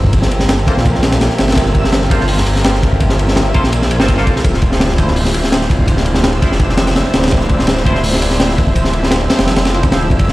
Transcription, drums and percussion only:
0.04 kick
0.13 kick, ride
0.22 snare
0.31 ride
0.40 snare
0.49 snare, ride
0.59 ride
0.67 kick, ride
0.77 snare
0.85 kick, ride
0.95 snare
1.03 snare, ride
1.12 snare, ride
1.21 snare, ride
1.30 snare
1.38 snare, ride
1.48 snare, ride
1.52 snare, ride
1.56 kick, ride
1.65 snare
1.74 kick, ride
1.84 snare
1.92 snare, ride
2.01 snare
2.10 kick, ride
2.20 snare
2.28 open hi-hat
2.38 snare
2.46 ride
2.56 snare
2.64 snare, ride
2.74 snare
2.83 kick, ride
2.93 kick
3.00 kick, ride
3.09 snare
3.19 ride
3.28 snare
3.36 snare, ride
3.46 ride
3.54 kick, ride
3.64 snare
3.72 ride
3.82 snare
3.91 ride
4.00 snare
4.08 kick, ride
4.18 snare
4.27 kick, ride
4.36 snare
4.44 kick, ride
4.54 snare
4.62 kick, ride
4.72 snare
4.80 snare, ride
4.89 snare
4.98 kick, ride
5.08 snare
5.16 open hi-hat
5.25 snare
5.34 ride
5.44 snare
5.52 snare, ride
5.61 snare
5.70 kick, ride
5.79 kick
5.88 kick, ride
5.97 snare
6.06 ride
6.15 snare
6.24 snare, ride
6.33 ride
6.42 kick, ride
6.52 snare
6.59 kick, ride
6.69 snare
6.77 snare, ride
6.87 snare, ride
6.96 snare, ride
7.05 snare
7.13 snare, ride
7.22 snare, ride
7.28 snare, ride
7.31 kick, ride
7.40 snare
7.49 kick, ride
7.59 snare
7.67 snare, ride
7.77 snare
7.85 kick, ride
7.95 snare
8.04 open hi-hat
8.13 snare
8.22 ride
8.31 snare
8.40 snare, ride
8.50 snare
8.58 kick, ride
8.67 kick
8.75 kick, ride
8.84 snare
8.93 ride
9.03 snare
9.11 snare, ride
9.21 ride
9.30 snare, ride
9.38 snare, ride
9.47 snare, ride
9.56 snare, ride
9.65 snare, ride
9.74 ride
9.83 kick, ride
9.92 snare, ride
10.02 ride
10.10 kick, ride
10.19 kick, ride
10.28 snare

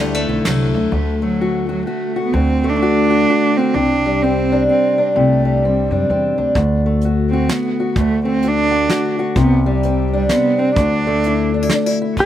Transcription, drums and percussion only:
0.45 snare, ride
6.55 kick, closed hi-hat
7.01 closed hi-hat
7.49 snare, closed hi-hat
7.96 kick, closed hi-hat
8.42 closed hi-hat
8.89 snare, closed hi-hat
9.36 kick, closed hi-hat
9.83 closed hi-hat
10.29 snare, closed hi-hat
10.76 kick, closed hi-hat
11.23 closed hi-hat
11.69 snare, closed hi-hat
12.17 kick, ride

